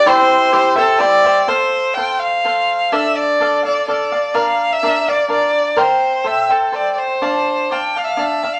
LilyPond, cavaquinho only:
\new Staff \with { instrumentName = "Cavaquinho" } { \time 3/4 \key c \major \tempo 4 = 126 <e' g' c'' e''>4 <e' g' c'' e''>8 <g' c'' e''>8 <e' g' c'' e''>8 <g' c'' e''>8 | \key f \major <f' a' c'' f''>4 <f' a' c'' f''>4 <f' a' c'' f''>4 | <d' a' d'' f''>4 <d' a' d'' f''>8 <a' d'' f''>8 <d' a' d'' f''>8 <a' d'' f''>8 | <d' bes' d'' f''>4 <d' bes' d'' f''>8 <bes' d'' f''>8 <d' bes' d'' f''>4 |
<bes' c'' f'' g''>4 <a' c'' e'' g''>8 <c'' e'' g''>8 <a' c'' e'' g''>4 | <d' d'' f'' a''>4 <d' d'' f'' a''>8 <d'' f'' a''>8 <d' d'' f'' a''>8 <d'' f'' a''>8 | }